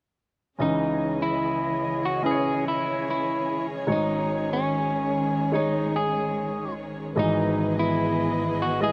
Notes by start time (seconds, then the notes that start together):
0.59 C#2 C#3 E3 C#4 D#4 G#4 C#5 D#5
1.22 E4
2.05 F#4
2.23 C#4 E4 G#4 B4
2.31 C#5
2.68 E4
3.10 E4
3.87 G#1 G#2 D#3 G#3 D#4 C#5
3.92 D#4
4.53 C#4
5.52 G#3 D#4 C#5
5.96 G#4
7.16 G#1 G#2 E3 G#3 B3 D#4 G#4 B4 D#5
7.79 E4
8.62 F#4
8.80 G#3 E4 G#4 D#5